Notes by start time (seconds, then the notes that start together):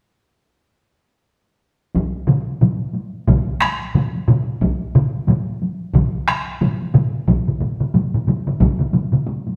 1.95 taiko, taiko high
2.15 taiko high
2.28 taiko low-mid, taiko mid, taiko high
2.49 taiko high
2.61 taiko low-mid, taiko mid, taiko high
2.82 taiko high
2.94 taiko high
3.15 taiko high
3.28 taiko, taiko low-mid, taiko mid, taiko high
3.48 taiko high
3.61 taiko rim, taiko high
3.82 taiko high
3.95 taiko low-mid, taiko mid, taiko high
4.15 taiko high
4.28 taiko low-mid, taiko mid, taiko high
4.48 taiko high
4.61 taiko, taiko high
4.81 taiko high
4.95 taiko low-mid, taiko mid
5.14 taiko high
5.28 taiko low-mid, taiko mid, taiko high
5.48 taiko high
5.62 taiko high
5.81 taiko high
5.95 taiko, taiko low-mid, taiko mid, taiko high
6.15 taiko high
6.28 taiko rim, taiko high
6.49 taiko high
6.61 taiko low-mid, taiko mid, taiko high
6.82 taiko high
6.94 taiko low-mid, taiko mid, taiko high
7.15 taiko high
7.28 taiko, taiko low-mid, taiko mid, taiko high
7.47 taiko low-mid, taiko mid, taiko high
7.60 taiko low-mid, taiko mid, taiko high
7.80 taiko low-mid, taiko mid, taiko high
7.94 taiko low-mid, taiko mid, taiko high
8.14 taiko low-mid, taiko mid, taiko high
8.27 taiko low-mid, taiko mid, taiko high
8.47 taiko low-mid, taiko mid, taiko high
8.60 taiko, taiko low-mid, taiko mid, taiko high
8.80 taiko low-mid, taiko mid, taiko high
8.93 taiko low-mid, taiko mid, taiko high
9.13 taiko low-mid, taiko mid, taiko high
9.26 taiko high
9.47 taiko high